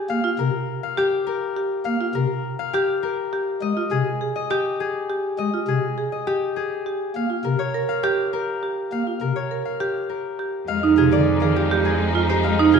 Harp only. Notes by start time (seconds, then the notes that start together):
Already playing: G4 G#4 D#5
0.10 F5
0.39 A#4
0.83 F5
0.98 G4
1.27 A#4
1.85 F5
2.15 A#4
2.59 F5
2.73 G4
3.03 A#4
3.62 D#5
3.91 G#4
4.36 D#5
4.50 G4
4.80 G#4
5.38 D#5
5.68 G#4
6.12 D#5
6.27 G4
6.56 G#4
7.16 F5
7.44 A#4
7.59 C#5
7.89 F5
8.03 G4
8.33 A#4
8.92 F5
9.21 A#4
9.36 C#5
9.65 F5
9.80 G4
10.09 A#4
10.68 F5
10.97 G#4
11.12 D5
11.42 F5
11.56 G4
11.85 G#4
12.29 C5
12.44 F5
12.74 G#4